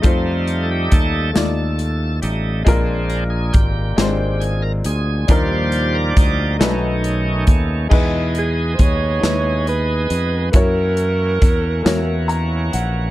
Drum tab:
CC |------|------|------|x-----|
HH |xxxxxx|xxxxxx|xxxxxx|-xxxxx|
SD |---o--|---o--|---o--|---o--|
BD |o-o---|o-o---|o-o--o|o-o---|

CC |------|
HH |xxxxxx|
SD |---o--|
BD |o-o---|